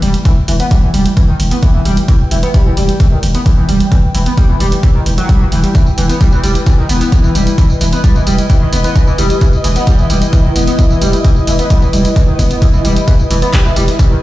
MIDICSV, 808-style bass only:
0, 0, Header, 1, 2, 480
1, 0, Start_track
1, 0, Key_signature, 1, "minor"
1, 0, Tempo, 458015
1, 265, Time_signature, 4, 2, 24, 8
1, 14908, End_track
2, 0, Start_track
2, 0, Title_t, "808-style bass"
2, 0, Program_c, 0, 38
2, 25, Note_on_c, 0, 28, 97
2, 145, Note_off_c, 0, 28, 0
2, 387, Note_on_c, 0, 28, 76
2, 499, Note_off_c, 0, 28, 0
2, 505, Note_on_c, 0, 28, 99
2, 625, Note_off_c, 0, 28, 0
2, 867, Note_on_c, 0, 28, 76
2, 979, Note_off_c, 0, 28, 0
2, 985, Note_on_c, 0, 28, 100
2, 1105, Note_off_c, 0, 28, 0
2, 1347, Note_on_c, 0, 28, 77
2, 1459, Note_off_c, 0, 28, 0
2, 1465, Note_on_c, 0, 28, 97
2, 1585, Note_off_c, 0, 28, 0
2, 1827, Note_on_c, 0, 28, 76
2, 1938, Note_off_c, 0, 28, 0
2, 1945, Note_on_c, 0, 28, 96
2, 2064, Note_off_c, 0, 28, 0
2, 2307, Note_on_c, 0, 28, 77
2, 2418, Note_off_c, 0, 28, 0
2, 2424, Note_on_c, 0, 28, 103
2, 2544, Note_off_c, 0, 28, 0
2, 2787, Note_on_c, 0, 28, 77
2, 2898, Note_off_c, 0, 28, 0
2, 2905, Note_on_c, 0, 28, 99
2, 3024, Note_off_c, 0, 28, 0
2, 3267, Note_on_c, 0, 28, 76
2, 3378, Note_off_c, 0, 28, 0
2, 3385, Note_on_c, 0, 28, 95
2, 3504, Note_off_c, 0, 28, 0
2, 3747, Note_on_c, 0, 28, 76
2, 3859, Note_off_c, 0, 28, 0
2, 3865, Note_on_c, 0, 28, 93
2, 3985, Note_off_c, 0, 28, 0
2, 4227, Note_on_c, 0, 28, 76
2, 4339, Note_off_c, 0, 28, 0
2, 4345, Note_on_c, 0, 28, 99
2, 4465, Note_off_c, 0, 28, 0
2, 4708, Note_on_c, 0, 28, 77
2, 4819, Note_off_c, 0, 28, 0
2, 4825, Note_on_c, 0, 28, 99
2, 4945, Note_off_c, 0, 28, 0
2, 5188, Note_on_c, 0, 28, 75
2, 5299, Note_off_c, 0, 28, 0
2, 5305, Note_on_c, 0, 28, 98
2, 5425, Note_off_c, 0, 28, 0
2, 5667, Note_on_c, 0, 28, 73
2, 5779, Note_off_c, 0, 28, 0
2, 5785, Note_on_c, 0, 28, 99
2, 5905, Note_off_c, 0, 28, 0
2, 6147, Note_on_c, 0, 28, 73
2, 6259, Note_off_c, 0, 28, 0
2, 6265, Note_on_c, 0, 28, 100
2, 6385, Note_off_c, 0, 28, 0
2, 6628, Note_on_c, 0, 28, 76
2, 6739, Note_off_c, 0, 28, 0
2, 6745, Note_on_c, 0, 28, 102
2, 6865, Note_off_c, 0, 28, 0
2, 7107, Note_on_c, 0, 28, 78
2, 7219, Note_off_c, 0, 28, 0
2, 7225, Note_on_c, 0, 28, 100
2, 7344, Note_off_c, 0, 28, 0
2, 7587, Note_on_c, 0, 28, 79
2, 7699, Note_off_c, 0, 28, 0
2, 7705, Note_on_c, 0, 28, 98
2, 7825, Note_off_c, 0, 28, 0
2, 8067, Note_on_c, 0, 28, 73
2, 8178, Note_off_c, 0, 28, 0
2, 8184, Note_on_c, 0, 28, 102
2, 8304, Note_off_c, 0, 28, 0
2, 8547, Note_on_c, 0, 28, 80
2, 8659, Note_off_c, 0, 28, 0
2, 8665, Note_on_c, 0, 28, 95
2, 8785, Note_off_c, 0, 28, 0
2, 9027, Note_on_c, 0, 28, 76
2, 9139, Note_off_c, 0, 28, 0
2, 9145, Note_on_c, 0, 28, 99
2, 9265, Note_off_c, 0, 28, 0
2, 9507, Note_on_c, 0, 28, 75
2, 9619, Note_off_c, 0, 28, 0
2, 9625, Note_on_c, 0, 28, 97
2, 9745, Note_off_c, 0, 28, 0
2, 9987, Note_on_c, 0, 28, 76
2, 10099, Note_off_c, 0, 28, 0
2, 10106, Note_on_c, 0, 28, 104
2, 10225, Note_off_c, 0, 28, 0
2, 10468, Note_on_c, 0, 28, 79
2, 10579, Note_off_c, 0, 28, 0
2, 10586, Note_on_c, 0, 28, 100
2, 10705, Note_off_c, 0, 28, 0
2, 10948, Note_on_c, 0, 28, 80
2, 11059, Note_off_c, 0, 28, 0
2, 11066, Note_on_c, 0, 28, 98
2, 11185, Note_off_c, 0, 28, 0
2, 11427, Note_on_c, 0, 28, 75
2, 11539, Note_off_c, 0, 28, 0
2, 11546, Note_on_c, 0, 28, 96
2, 11665, Note_off_c, 0, 28, 0
2, 11908, Note_on_c, 0, 28, 77
2, 12020, Note_off_c, 0, 28, 0
2, 12026, Note_on_c, 0, 28, 98
2, 12145, Note_off_c, 0, 28, 0
2, 12388, Note_on_c, 0, 28, 80
2, 12499, Note_off_c, 0, 28, 0
2, 12506, Note_on_c, 0, 28, 99
2, 12625, Note_off_c, 0, 28, 0
2, 12867, Note_on_c, 0, 28, 81
2, 12978, Note_off_c, 0, 28, 0
2, 12985, Note_on_c, 0, 28, 98
2, 13104, Note_off_c, 0, 28, 0
2, 13348, Note_on_c, 0, 28, 74
2, 13459, Note_off_c, 0, 28, 0
2, 13465, Note_on_c, 0, 28, 97
2, 13585, Note_off_c, 0, 28, 0
2, 13827, Note_on_c, 0, 28, 78
2, 13939, Note_off_c, 0, 28, 0
2, 13946, Note_on_c, 0, 28, 100
2, 14065, Note_off_c, 0, 28, 0
2, 14308, Note_on_c, 0, 28, 78
2, 14419, Note_off_c, 0, 28, 0
2, 14426, Note_on_c, 0, 28, 100
2, 14545, Note_off_c, 0, 28, 0
2, 14788, Note_on_c, 0, 28, 77
2, 14899, Note_off_c, 0, 28, 0
2, 14908, End_track
0, 0, End_of_file